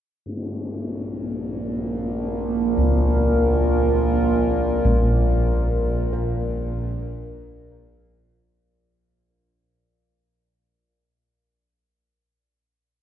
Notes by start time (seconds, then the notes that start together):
0.25 A#1 A#2 A#3, tam-tam
1.85 A#4
2.32 F4
2.77 C#2
4.85 A#1
6.13 A#4